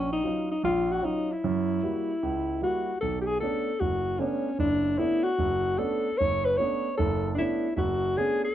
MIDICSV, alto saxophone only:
0, 0, Header, 1, 2, 480
1, 0, Start_track
1, 0, Tempo, 396563
1, 1736, Time_signature, 4, 2, 24, 8
1, 10347, End_track
2, 0, Start_track
2, 0, Title_t, "Alto saxophone"
2, 0, Program_c, 0, 65
2, 0, Note_on_c, 0, 61, 79
2, 129, Note_off_c, 0, 61, 0
2, 151, Note_on_c, 0, 63, 79
2, 587, Note_off_c, 0, 63, 0
2, 621, Note_on_c, 0, 63, 76
2, 770, Note_off_c, 0, 63, 0
2, 782, Note_on_c, 0, 65, 84
2, 1109, Note_on_c, 0, 66, 82
2, 1127, Note_off_c, 0, 65, 0
2, 1268, Note_on_c, 0, 63, 81
2, 1286, Note_off_c, 0, 66, 0
2, 1596, Note_on_c, 0, 64, 68
2, 1614, Note_off_c, 0, 63, 0
2, 3179, Note_off_c, 0, 64, 0
2, 3186, Note_on_c, 0, 66, 75
2, 3627, Note_off_c, 0, 66, 0
2, 3641, Note_on_c, 0, 69, 84
2, 3866, Note_off_c, 0, 69, 0
2, 3892, Note_on_c, 0, 67, 52
2, 3953, Note_on_c, 0, 68, 78
2, 3971, Note_off_c, 0, 67, 0
2, 4111, Note_off_c, 0, 68, 0
2, 4118, Note_on_c, 0, 69, 83
2, 4603, Note_on_c, 0, 66, 77
2, 4621, Note_off_c, 0, 69, 0
2, 5078, Note_on_c, 0, 61, 79
2, 5096, Note_off_c, 0, 66, 0
2, 5556, Note_off_c, 0, 61, 0
2, 5563, Note_on_c, 0, 62, 88
2, 6032, Note_on_c, 0, 64, 93
2, 6050, Note_off_c, 0, 62, 0
2, 6338, Note_on_c, 0, 66, 93
2, 6356, Note_off_c, 0, 64, 0
2, 6998, Note_on_c, 0, 69, 87
2, 7017, Note_off_c, 0, 66, 0
2, 7478, Note_on_c, 0, 73, 94
2, 7497, Note_off_c, 0, 69, 0
2, 7806, Note_on_c, 0, 71, 85
2, 7824, Note_off_c, 0, 73, 0
2, 7959, Note_on_c, 0, 73, 90
2, 7978, Note_off_c, 0, 71, 0
2, 8433, Note_off_c, 0, 73, 0
2, 8440, Note_on_c, 0, 69, 96
2, 8838, Note_off_c, 0, 69, 0
2, 8893, Note_on_c, 0, 62, 66
2, 8934, Note_on_c, 0, 64, 93
2, 8952, Note_off_c, 0, 62, 0
2, 9355, Note_off_c, 0, 64, 0
2, 9393, Note_on_c, 0, 64, 65
2, 9420, Note_on_c, 0, 66, 79
2, 9439, Note_off_c, 0, 64, 0
2, 9895, Note_on_c, 0, 68, 89
2, 9913, Note_off_c, 0, 66, 0
2, 10209, Note_off_c, 0, 68, 0
2, 10223, Note_on_c, 0, 69, 81
2, 10347, Note_off_c, 0, 69, 0
2, 10347, End_track
0, 0, End_of_file